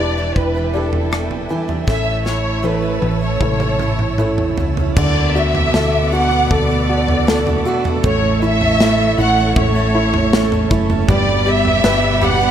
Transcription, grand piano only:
Already playing: E3
0.00 D4 E4 G4
0.74 D4 E4 G4
1.50 E3
1.88 A3
2.64 E4 A4 C#5
3.41 E4 A4 C#5
4.19 E4 A4 C#5
4.96 D3
5.35 F#4
5.74 A4
6.12 F#4
6.51 A4
6.89 F#4
7.28 A4
7.66 F#4
8.04 A3
8.42 E4
8.80 A3
9.18 E4
9.56 A3
9.95 E4
10.33 A3
10.71 E4
11.08 G3
11.46 G4
11.84 B4
12.22 G4

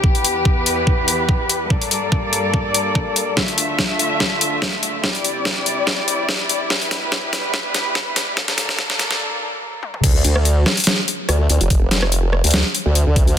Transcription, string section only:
Already playing: G4
0.04 E2 E3 B3 B4
1.70 G2 G3 A#3 A4 D5
3.37 D2 D3 A3 F4 E5
5.03 C2 C3 G3 E4 D5
6.70 E2 B2 G3 B4
8.37 G2 G3 A#3 D4 A4

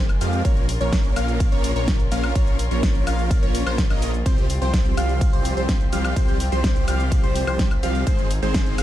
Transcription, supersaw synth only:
0.21 F3 G#3 C4 G4 F5
0.45 F3 A#3 C#4 A#4 C#5
0.81 F3 A#3 C#4 A#4 C#5
1.16 F3 A#3 C#4 A#4 F5
1.52 F3 A#3 C#4 A#4 C#5
1.76 F3 A#3 C#4 A#4 C#5
2.12 F3 A#3 C#4 A#4 F5
2.35 F3 A#3 C#4 A#4 C#5
2.71 F3 A#3 C#4 A#4 C#5
3.07 F3 A#3 C#4 A#4 F5
3.43 F3 A#3 C#4 A#4 C#5
3.66 F3 A#3 C#4 A#4 C5
3.90 F3 A#3 C#4 A#4 D#5
4.26 F3 G3 C4 G4 C5
4.62 F3 G3 C4 G4 C5
4.97 F3 G3 C4 G4 F5
5.33 F3 G3 C4 G4 C5
5.57 F3 G3 C4 G4 C5
5.93 F3 G3 C4 G4 F5
6.16 F3 G3 C4 G4 C5
6.52 F3 G3 C4 G4 C5
6.88 F3 G3 C4 G4 F5
7.23 F3 G3 C4 G4 C5
7.47 F3 G3 C4 G4 C5
7.83 F3 G3 C4 G4 F5
8.07 D#3 G#3 C4 G#4 C5
8.42 D#3 G#3 C4 G#4 C5
8.78 D#3 G#3 C4 G#4 F5

